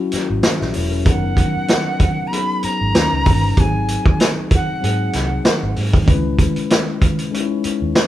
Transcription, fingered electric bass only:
0, 0, Header, 1, 3, 480
1, 0, Start_track
1, 0, Tempo, 627615
1, 807, Time_signature, 4, 2, 24, 8
1, 6172, End_track
2, 0, Start_track
2, 0, Title_t, "Fingered electric bass"
2, 0, Program_c, 0, 33
2, 228, Note_on_c, 0, 32, 72
2, 310, Note_off_c, 0, 32, 0
2, 471, Note_on_c, 0, 34, 67
2, 552, Note_off_c, 0, 34, 0
2, 579, Note_on_c, 0, 28, 86
2, 811, Note_off_c, 0, 28, 0
2, 811, Note_on_c, 0, 30, 95
2, 1099, Note_off_c, 0, 30, 0
2, 2149, Note_on_c, 0, 32, 80
2, 2230, Note_off_c, 0, 32, 0
2, 2249, Note_on_c, 0, 39, 85
2, 2349, Note_off_c, 0, 39, 0
2, 2389, Note_on_c, 0, 37, 66
2, 2471, Note_off_c, 0, 37, 0
2, 2499, Note_on_c, 0, 31, 91
2, 2682, Note_off_c, 0, 31, 0
2, 2736, Note_on_c, 0, 32, 91
2, 3022, Note_off_c, 0, 32, 0
2, 3697, Note_on_c, 0, 44, 75
2, 3881, Note_off_c, 0, 44, 0
2, 3934, Note_on_c, 0, 36, 80
2, 4119, Note_off_c, 0, 36, 0
2, 4303, Note_on_c, 0, 32, 63
2, 4387, Note_off_c, 0, 32, 0
2, 4412, Note_on_c, 0, 44, 86
2, 4598, Note_off_c, 0, 44, 0
2, 4651, Note_on_c, 0, 37, 90
2, 4938, Note_off_c, 0, 37, 0
2, 5980, Note_on_c, 0, 39, 86
2, 6064, Note_off_c, 0, 39, 0
2, 6172, End_track
3, 0, Start_track
3, 0, Title_t, "Muted fingered electric bass strokes"
3, 100, Note_on_c, 9, 29, 46
3, 177, Note_off_c, 9, 29, 0
3, 1193, Note_on_c, 9, 29, 44
3, 1269, Note_off_c, 9, 29, 0
3, 2017, Note_on_c, 9, 29, 43
3, 2094, Note_off_c, 9, 29, 0
3, 3104, Note_on_c, 9, 29, 40
3, 3181, Note_off_c, 9, 29, 0
3, 4175, Note_on_c, 9, 29, 36
3, 4252, Note_off_c, 9, 29, 0
3, 5026, Note_on_c, 9, 29, 41
3, 5103, Note_off_c, 9, 29, 0
3, 5851, Note_on_c, 9, 29, 42
3, 5927, Note_off_c, 9, 29, 0
3, 6172, End_track
0, 0, End_of_file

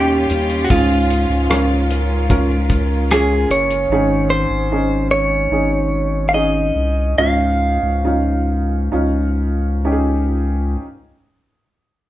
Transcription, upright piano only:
0, 0, Header, 1, 2, 480
1, 0, Start_track
1, 0, Key_signature, -5, "major"
1, 0, Tempo, 800000
1, 424, Time_signature, 4, 2, 24, 8
1, 2823, Tempo, 825309
1, 4263, Tempo, 874636
1, 5223, Tempo, 918836
1, 5703, Tempo, 966184
1, 6821, End_track
2, 0, Start_track
2, 0, Title_t, "Upright piano"
2, 0, Program_c, 0, 0
2, 0, Control_c, 0, 64, 127
2, 0, Note_on_c, 0, 61, 61
2, 0, Note_on_c, 0, 63, 52
2, 0, Note_on_c, 0, 67, 70
2, 0, Note_on_c, 0, 70, 72
2, 397, Note_off_c, 0, 61, 0
2, 397, Note_off_c, 0, 63, 0
2, 398, Note_off_c, 0, 67, 0
2, 421, Note_on_c, 0, 65, 58
2, 422, Note_on_c, 0, 44, 48
2, 422, Note_on_c, 0, 61, 60
2, 424, Note_on_c, 0, 68, 63
2, 431, Control_c, 0, 64, 0
2, 436, Note_off_c, 0, 70, 0
2, 538, Control_c, 0, 64, 127
2, 878, Note_off_c, 0, 65, 0
2, 879, Note_off_c, 0, 61, 0
2, 880, Note_off_c, 0, 68, 0
2, 897, Note_on_c, 0, 65, 50
2, 898, Note_on_c, 0, 61, 61
2, 898, Note_on_c, 0, 70, 65
2, 1119, Note_off_c, 0, 44, 0
2, 1356, Note_off_c, 0, 65, 0
2, 1356, Note_off_c, 0, 70, 0
2, 1357, Note_off_c, 0, 61, 0
2, 1374, Note_on_c, 0, 61, 65
2, 1379, Note_on_c, 0, 65, 59
2, 1382, Note_on_c, 0, 70, 70
2, 1835, Note_off_c, 0, 61, 0
2, 1837, Note_off_c, 0, 65, 0
2, 1839, Note_off_c, 0, 70, 0
2, 1868, Note_on_c, 0, 61, 74
2, 1870, Note_on_c, 0, 65, 68
2, 1870, Note_on_c, 0, 68, 75
2, 2322, Note_off_c, 0, 61, 0
2, 2323, Note_off_c, 0, 65, 0
2, 2323, Note_off_c, 0, 68, 0
2, 2351, Control_c, 0, 64, 0
2, 2351, Note_on_c, 0, 61, 74
2, 2352, Note_on_c, 0, 44, 52
2, 2352, Note_on_c, 0, 63, 64
2, 2355, Note_on_c, 0, 68, 80
2, 2356, Note_on_c, 0, 51, 47
2, 2458, Control_c, 0, 64, 127
2, 2805, Note_off_c, 0, 61, 0
2, 2805, Note_off_c, 0, 63, 0
2, 2806, Note_off_c, 0, 68, 0
2, 2831, Note_on_c, 0, 63, 52
2, 2833, Note_on_c, 0, 61, 63
2, 2835, Note_on_c, 0, 68, 59
2, 3041, Note_off_c, 0, 44, 0
2, 3042, Note_off_c, 0, 51, 0
2, 3276, Note_off_c, 0, 63, 0
2, 3277, Note_off_c, 0, 61, 0
2, 3277, Note_off_c, 0, 68, 0
2, 3296, Note_on_c, 0, 61, 52
2, 3297, Note_on_c, 0, 63, 52
2, 3302, Note_on_c, 0, 68, 57
2, 3751, Note_off_c, 0, 61, 0
2, 3751, Note_off_c, 0, 63, 0
2, 3754, Note_off_c, 0, 68, 0
2, 3773, Note_on_c, 0, 61, 56
2, 3775, Note_on_c, 0, 63, 56
2, 3777, Note_on_c, 0, 68, 64
2, 4238, Note_off_c, 0, 61, 0
2, 4239, Note_off_c, 0, 63, 0
2, 4240, Note_off_c, 0, 68, 0
2, 4262, Note_on_c, 0, 44, 46
2, 4262, Note_on_c, 0, 61, 65
2, 4263, Note_on_c, 0, 63, 58
2, 4265, Note_on_c, 0, 65, 77
2, 4270, Control_c, 0, 64, 0
2, 4356, Control_c, 0, 64, 127
2, 4712, Note_off_c, 0, 61, 0
2, 4713, Note_off_c, 0, 63, 0
2, 4714, Note_off_c, 0, 65, 0
2, 4739, Note_on_c, 0, 61, 51
2, 4739, Note_on_c, 0, 63, 50
2, 4739, Note_on_c, 0, 65, 60
2, 4956, Note_off_c, 0, 44, 0
2, 5201, Note_off_c, 0, 61, 0
2, 5201, Note_off_c, 0, 63, 0
2, 5201, Note_off_c, 0, 65, 0
2, 5215, Note_on_c, 0, 61, 56
2, 5216, Note_on_c, 0, 63, 47
2, 5221, Note_on_c, 0, 65, 62
2, 5676, Note_off_c, 0, 61, 0
2, 5676, Note_off_c, 0, 63, 0
2, 5679, Note_off_c, 0, 65, 0
2, 5701, Note_on_c, 0, 61, 59
2, 5702, Note_on_c, 0, 63, 54
2, 5704, Note_on_c, 0, 67, 46
2, 5739, Note_on_c, 0, 68, 65
2, 5742, Note_off_c, 0, 67, 0
2, 6153, Note_off_c, 0, 61, 0
2, 6154, Note_off_c, 0, 63, 0
2, 6172, Note_off_c, 0, 68, 0
2, 6185, Control_c, 0, 64, 0
2, 6821, End_track
0, 0, End_of_file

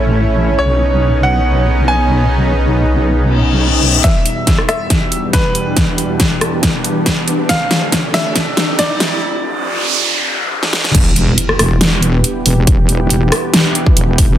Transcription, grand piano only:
0, 0, Header, 1, 2, 480
1, 0, Start_track
1, 0, Tempo, 431655
1, 652, Time_signature, 4, 2, 24, 8
1, 15991, End_track
2, 0, Start_track
2, 0, Title_t, "Grand piano"
2, 0, Program_c, 0, 0
2, 0, Note_on_c, 0, 69, 84
2, 560, Note_off_c, 0, 69, 0
2, 651, Note_on_c, 0, 73, 88
2, 1280, Note_off_c, 0, 73, 0
2, 1371, Note_on_c, 0, 78, 91
2, 2000, Note_off_c, 0, 78, 0
2, 2090, Note_on_c, 0, 80, 90
2, 4400, Note_off_c, 0, 80, 0
2, 4490, Note_on_c, 0, 76, 88
2, 5120, Note_off_c, 0, 76, 0
2, 5211, Note_on_c, 0, 76, 89
2, 5840, Note_off_c, 0, 76, 0
2, 5931, Note_on_c, 0, 71, 90
2, 8240, Note_off_c, 0, 71, 0
2, 8331, Note_on_c, 0, 77, 91
2, 8960, Note_off_c, 0, 77, 0
2, 9052, Note_on_c, 0, 76, 95
2, 9680, Note_off_c, 0, 76, 0
2, 9770, Note_on_c, 0, 74, 91
2, 12080, Note_off_c, 0, 74, 0
2, 15991, End_track
0, 0, End_of_file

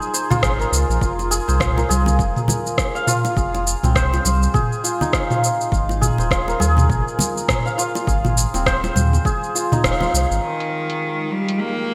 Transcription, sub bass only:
0, 0, Header, 1, 2, 480
1, 0, Start_track
1, 0, Key_signature, -4, "minor"
1, 0, Tempo, 588235
1, 831, Time_signature, 4, 2, 24, 8
1, 9744, End_track
2, 0, Start_track
2, 0, Title_t, "Sub bass"
2, 0, Program_c, 0, 38
2, 349, Note_on_c, 0, 32, 102
2, 533, Note_off_c, 0, 32, 0
2, 587, Note_on_c, 0, 37, 96
2, 688, Note_off_c, 0, 37, 0
2, 729, Note_on_c, 0, 34, 88
2, 802, Note_off_c, 0, 34, 0
2, 827, Note_on_c, 0, 29, 95
2, 1145, Note_off_c, 0, 29, 0
2, 1210, Note_on_c, 0, 36, 93
2, 1505, Note_off_c, 0, 36, 0
2, 1549, Note_on_c, 0, 36, 90
2, 1788, Note_on_c, 0, 29, 89
2, 1801, Note_off_c, 0, 36, 0
2, 1889, Note_off_c, 0, 29, 0
2, 2746, Note_on_c, 0, 29, 92
2, 3064, Note_off_c, 0, 29, 0
2, 3127, Note_on_c, 0, 36, 92
2, 3424, Note_off_c, 0, 36, 0
2, 3469, Note_on_c, 0, 36, 94
2, 3653, Note_off_c, 0, 36, 0
2, 4667, Note_on_c, 0, 32, 100
2, 4985, Note_off_c, 0, 32, 0
2, 5046, Note_on_c, 0, 27, 93
2, 5343, Note_off_c, 0, 27, 0
2, 5389, Note_on_c, 0, 39, 93
2, 5625, Note_on_c, 0, 32, 99
2, 5638, Note_off_c, 0, 39, 0
2, 5728, Note_off_c, 0, 32, 0
2, 6589, Note_on_c, 0, 32, 98
2, 6906, Note_off_c, 0, 32, 0
2, 6968, Note_on_c, 0, 27, 89
2, 7264, Note_off_c, 0, 27, 0
2, 7310, Note_on_c, 0, 39, 83
2, 7493, Note_off_c, 0, 39, 0
2, 8029, Note_on_c, 0, 27, 107
2, 8213, Note_off_c, 0, 27, 0
2, 8272, Note_on_c, 0, 36, 95
2, 8371, Note_off_c, 0, 36, 0
2, 8411, Note_on_c, 0, 32, 88
2, 8483, Note_off_c, 0, 32, 0
2, 9744, End_track
0, 0, End_of_file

